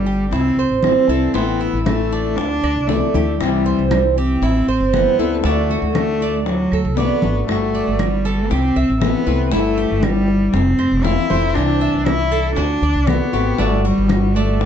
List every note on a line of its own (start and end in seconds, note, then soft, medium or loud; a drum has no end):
0.00 0.29 G1 medium
0.00 0.31 D3 soft
0.00 0.31 G3 medium
0.00 0.31 G3 soft
0.00 0.32 D4 medium
0.00 0.32 G4 medium
0.06 0.31 G4 medium
0.06 high conga soft
0.31 0.56 C2 medium
0.31 0.80 C4 medium
0.31 0.57 E4 medium
0.31 muted nylon-string guitar stroke medium
0.31 high bongo medium
0.31 high conga soft
0.56 0.69 C2 medium
0.56 1.08 C5 medium
0.56 high conga soft
0.69 0.94 A1 medium
0.82 1.08 E3 soft
0.82 1.09 G3 soft
0.82 1.35 C4 medium
0.82 1.09 C4 soft
0.82 high bongo medium
0.82 low bongo medium
0.82 high conga medium
0.82 claves medium
0.87 1.08 E4 medium
1.08 1.33 C2 medium
1.08 1.34 E3 medium
1.08 1.35 G3 medium
1.08 1.34 C4 medium
1.08 1.34 E4 medium
1.08 1.34 A4 medium
1.08 high conga soft
1.34 1.71 A1 medium
1.34 1.84 E3 medium
1.34 1.85 A3 medium
1.34 1.84 B3 medium
1.34 1.59 C4 medium
1.34 1.86 E4 medium
1.34 high bongo medium
1.34 high conga soft
1.61 2.10 E4 medium
1.61 high bongo soft
1.61 high conga soft
1.73 2.34 A1 medium
1.85 2.36 E3 soft
1.85 2.37 A3 medium
1.85 2.37 A3 soft
1.85 2.37 C4 soft
1.85 2.38 E4 soft
1.85 high bongo soft
1.85 high conga medium
1.85 claves medium
2.12 2.62 D4 medium
2.12 high bongo soft
2.36 2.62 D2 medium
2.36 2.89 D4 loud
2.36 muted nylon-string guitar stroke medium
2.36 high bongo medium
2.36 high conga soft
2.63 2.75 D2 medium
2.63 2.88 D5 medium
2.63 high conga soft
2.63 claves medium
2.76 3.00 C2 medium
2.87 3.13 D3 soft
2.87 3.39 A3 medium
2.87 3.14 A3 soft
2.87 3.14 D4 medium
2.87 3.13 E4 medium
2.87 3.14 D5 medium
2.87 high bongo medium
2.87 low bongo medium
2.87 high conga soft
3.14 3.39 D2 medium
3.14 3.40 A3 medium
3.14 3.40 D4 medium
3.14 3.39 E4 medium
3.14 3.64 G4 medium
3.14 high bongo soft
3.14 high conga medium
3.39 3.77 C2 medium
3.39 3.91 C3 medium
3.39 3.90 E3 medium
3.39 3.87 G3 medium
3.39 3.91 G3 medium
3.39 3.91 C4 medium
3.39 3.92 E4 medium
3.39 high bongo medium
3.39 high conga soft
3.39 claves medium
3.65 4.15 C5 medium
3.65 high conga soft
3.79 4.39 C2 medium
3.91 4.42 E3 soft
3.91 4.02 G3 medium
3.91 4.42 G3 soft
3.91 4.43 C4 soft
3.91 4.43 E4 medium
3.91 high bongo soft
3.91 high conga medium
3.91 claves medium
4.16 4.95 C4 medium
4.16 4.42 G4 medium
4.16 high conga soft
4.42 4.66 A1 loud
4.42 4.68 E4 medium
4.42 muted nylon-string guitar stroke medium
4.42 high bongo medium
4.42 high conga soft
4.67 4.80 A1 medium
4.67 5.18 C5 medium
4.67 high conga soft
4.80 5.05 G1 medium
4.93 5.18 E3 medium
4.93 5.19 G3 medium
4.93 5.42 B3 medium
4.93 5.19 C4 medium
4.93 5.18 E4 soft
4.93 high bongo medium
4.93 low bongo medium
4.93 high conga medium
4.93 claves medium
5.19 5.43 C#2 medium
5.19 5.45 G3 medium
5.19 5.44 C4 medium
5.19 5.44 E4 medium
5.19 5.44 A4 medium
5.19 high conga soft
5.43 5.81 D2 medium
5.43 5.94 D3 medium
5.43 5.91 A3 medium
5.43 5.95 A3 medium
5.43 5.70 D4 medium
5.43 5.95 D4 medium
5.43 high bongo medium
5.43 high conga soft
5.47 5.96 F#4 medium
5.69 6.20 F#4 medium
5.69 high bongo soft
5.69 high conga soft
5.82 6.68 D2 medium
5.93 6.45 D3 soft
5.93 6.42 A3 medium
5.93 6.46 A3 soft
5.93 6.46 D4 soft
5.93 high bongo soft
5.93 high conga medium
5.93 claves medium
5.98 6.47 F#4 medium
6.21 6.71 D4 medium
6.21 high bongo soft
6.46 6.94 F#3 medium
6.46 muted nylon-string guitar stroke medium
6.46 high bongo medium
6.46 high conga soft
6.72 6.84 D2 medium
6.72 6.97 A4 medium
6.72 high conga soft
6.72 claves medium
6.85 7.09 C2 medium
6.96 7.22 D3 soft
6.96 7.22 A3 medium
6.96 7.44 B3 medium
6.96 7.22 D4 medium
6.96 7.22 F#4 medium
6.96 7.22 D5 medium
6.96 high bongo medium
6.96 low bongo medium
6.96 high conga soft
7.22 7.47 G#1 medium
7.22 7.48 A3 medium
7.22 7.48 D4 medium
7.22 7.48 F#4 medium
7.22 high bongo soft
7.22 high conga medium
7.48 7.85 G1 medium
7.48 7.98 G3 medium
7.48 8.01 A3 medium
7.48 7.99 B3 medium
7.48 7.99 F#4 medium
7.48 high bongo medium
7.48 high conga soft
7.48 claves medium
7.74 8.24 D5 medium
7.74 high conga soft
7.87 8.48 G1 medium
7.99 8.49 G3 soft
7.99 8.51 G3 medium
7.99 8.50 B3 soft
7.99 8.50 F#4 soft
7.99 high bongo soft
7.99 high conga medium
7.99 claves medium
8.25 8.50 A4 medium
8.25 high conga soft
8.50 8.75 C2 medium
8.50 9.00 C4 medium
8.50 8.75 G4 medium
8.50 muted nylon-string guitar stroke medium
8.50 high bongo medium
8.50 high conga soft
8.76 8.88 C2 medium
8.76 9.25 E5 medium
8.76 high conga soft
8.90 9.13 A1 medium
9.00 9.25 E3 soft
9.00 9.26 A3 medium
9.00 9.48 B3 medium
9.00 9.26 C4 medium
9.00 9.25 E4 medium
9.00 high bongo medium
9.00 low bongo medium
9.00 high conga medium
9.00 claves medium
9.26 9.51 C2 medium
9.26 9.52 E3 medium
9.26 9.51 A3 medium
9.26 9.51 C4 medium
9.26 9.51 E4 medium
9.26 9.51 B4 medium
9.26 high conga soft
9.51 9.89 G1 medium
9.51 10.01 G3 medium
9.51 10.05 A3 medium
9.51 10.02 B3 medium
9.51 9.77 E4 medium
9.51 10.03 E4 medium
9.51 high bongo medium
9.51 high conga soft
9.77 10.27 G4 medium
9.77 high bongo soft
9.77 high conga soft
9.91 10.51 G1 medium
10.02 10.53 G3 soft
10.02 10.54 G3 loud
10.02 10.53 B3 medium
10.02 10.54 E4 soft
10.02 high bongo medium
10.02 high conga medium
10.02 claves medium
10.28 high bongo soft
10.53 10.78 F1 loud
10.53 11.06 C4 medium
10.53 muted nylon-string guitar stroke medium
10.53 high bongo medium
10.53 high conga soft
10.79 10.91 F1 medium
10.79 11.04 C5 medium
10.79 high conga soft
10.79 claves medium
10.91 11.16 E1 medium
11.04 11.29 E3 soft
11.04 11.29 A3 soft
11.04 11.30 C4 medium
11.04 11.56 E4 medium
11.04 11.29 F4 medium
11.04 11.29 F5 medium
11.04 high bongo medium
11.04 low bongo medium
11.04 high conga soft
11.30 11.55 F1 loud
11.30 11.55 E3 medium
11.30 11.55 A3 medium
11.30 11.55 C4 medium
11.30 11.55 F4 medium
11.30 11.79 C5 medium
11.30 high conga medium
11.54 11.92 C2 medium
11.54 12.06 C3 medium
11.54 12.04 E3 medium
11.54 12.05 G3 medium
11.54 12.06 D4 loud
11.54 12.06 D4 medium
11.54 12.07 E4 medium
11.54 high bongo medium
11.54 high conga soft
11.54 claves medium
11.81 12.31 E5 medium
11.81 high conga soft
11.94 12.54 C2 medium
12.05 12.56 E3 soft
12.05 12.56 G3 soft
12.05 12.57 D4 medium
12.05 12.55 E4 loud
12.05 12.57 E4 medium
12.05 high bongo medium
12.05 high conga medium
12.05 claves medium
12.32 12.57 A4 medium
12.32 high conga soft
12.56 12.81 D2 medium
12.56 13.09 D4 loud
12.56 12.82 F#4 medium
12.56 muted nylon-string guitar stroke medium
12.56 high bongo medium
12.56 high conga soft
12.82 12.94 D2 medium
12.82 13.32 D5 medium
12.82 high conga soft
12.95 13.20 C2 medium
13.07 13.32 D3 medium
13.07 13.33 A3 medium
13.07 13.60 B3 medium
13.07 13.33 C4 medium
13.07 13.32 F#4 medium
13.07 high bongo medium
13.07 low bongo medium
13.07 high conga medium
13.07 claves medium
13.33 13.58 G#1 medium
13.33 13.58 A3 medium
13.33 13.58 C4 medium
13.33 13.58 F#4 medium
13.33 13.58 G4 medium
13.33 high conga soft
13.58 13.95 G1 medium
13.58 14.08 G3 medium
13.58 13.84 A3 medium
13.58 14.09 B3 medium
13.58 13.84 D4 medium
13.58 14.10 F#4 medium
13.58 high bongo medium
13.58 high conga soft
13.84 14.37 G3 medium
13.84 14.34 F#4 medium
13.84 high bongo soft
13.84 high conga soft
13.98 14.65 G1 medium
14.09 14.60 G3 soft
14.09 14.60 B3 soft
14.09 14.61 F#4 medium
14.09 high bongo medium
14.09 high conga medium
14.09 claves medium
14.35 14.64 A3 medium
14.35 14.65 D4 medium
14.35 high bongo soft
14.60 14.65 G3 medium
14.60 muted nylon-string guitar stroke medium
14.60 high bongo medium
14.60 high conga soft